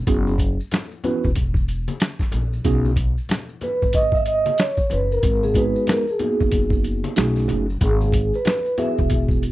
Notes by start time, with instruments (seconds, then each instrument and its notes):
0.07 upright bass F#1, tine electric piano B3 C#4 E4 F#4 G#4, kick, closed hi-hat, maracas
0.27 high conga, maracas
0.38 kick, closed hi-hat, maracas
0.60 maracas
0.71 snare, closed hi-hat, low conga, maracas
0.91 maracas
1.04 tine electric piano B3 C#4 E4 F#4 B4, closed hi-hat, low conga, maracas
1.24 upright bass E1, kick, maracas
1.35 kick, closed hi-hat, high conga, maracas
1.54 kick, maracas
1.68 closed hi-hat, maracas
1.88 closed hi-hat, high conga, maracas
2.00 snare, closed hi-hat, maracas
2.19 kick, snare, maracas
2.32 upright bass A#1, closed hi-hat, low conga, maracas
2.53 maracas
2.64 upright bass B1, tine electric piano B3 C#4 D#4 F#4 G#4, kick, closed hi-hat, maracas
2.85 high conga, maracas
2.96 kick, closed hi-hat, maracas
3.18 maracas
3.29 snare, closed hi-hat, low conga, maracas
3.49 maracas
3.61 vibraphone B4, closed hi-hat, low conga, maracas
3.82 upright bass G#1, kick, maracas
3.93 vibraphone D#5, kick, closed hi-hat, high conga, maracas
4.12 vibraphone E5, kick, maracas
4.26 vibraphone D#5, closed hi-hat, maracas
4.46 closed hi-hat, high conga, maracas
4.58 vibraphone C#5, snare, closed hi-hat, maracas
4.77 kick, maracas
4.90 upright bass F#1, vibraphone B4, closed hi-hat, low conga, maracas
5.12 vibraphone A#4, maracas
5.23 upright bass G#1, kick, closed hi-hat, maracas
5.43 vibraphone G#4, high conga, maracas
5.54 tine electric piano G#3 B3 D#4 F#4 G#4, vibraphone B4, kick, closed hi-hat, maracas
5.75 maracas
5.87 vibraphone A#4, snare, closed hi-hat, low conga, maracas
6.07 vibraphone G#4, maracas
6.19 tine electric piano A#3 B3 D#4 F#4 G#4, closed hi-hat, low conga, maracas
6.40 upright bass F#1, kick, maracas
6.51 kick, closed hi-hat, high conga, maracas
6.70 kick, maracas
6.84 closed hi-hat, maracas
7.04 closed hi-hat, high conga, maracas
7.16 upright bass B1, tine electric piano A3 C#4 D#4 F#4 G#4, snare, closed hi-hat, maracas
7.36 snare, maracas
7.48 upright bass F#1, closed hi-hat, low conga, maracas
7.70 maracas
7.81 upright bass G#1, vibraphone G#4, kick, closed hi-hat, maracas
8.01 high conga, maracas
8.12 kick, closed hi-hat, maracas
8.34 vibraphone B4, maracas
8.45 snare, closed hi-hat, low conga, maracas
8.65 maracas
8.78 tine electric piano B3 E4 F#4 G#4, vibraphone E5, closed hi-hat, low conga, maracas
8.98 upright bass E1, kick, maracas
9.10 kick, closed hi-hat, high conga, maracas
9.29 kick, maracas
9.43 closed hi-hat, maracas